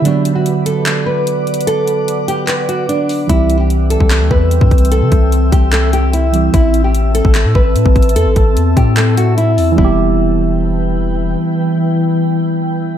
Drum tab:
HH |x-----x-----x-----x-----x-----------x-----x-x-x-|x-----x-----x-----x-----x-----x-----x-----o-----|x-----x-----x-----x-----x-----------x-----x-x-x-|x-----x-----x-----x-----x-----x-----x-----x-----|
CP |------------------------x-----------------------|------------------------x-----------------------|------------------------x-----------------------|------------------------x-----------------------|
BD |------------------------------------------------|------------------------------------------------|o--------------------o--------o--------o--o-----|------o-----------o-----------------------------|

HH |x-----x-----x-----x-----x-----------x-----x-x-x-|x-----x-----x-----x-----x-----x-----x-----o-----|------------------------------------------------|------------------------------------------------|
CP |------------------------x-----------------------|------------------------x-----------------------|------------------------------------------------|------------------------------------------------|
BD |o--------------------o--------o--------o--o-----|------o-----------o-----------------------------|o-----------------------------------------------|------------------------------------------------|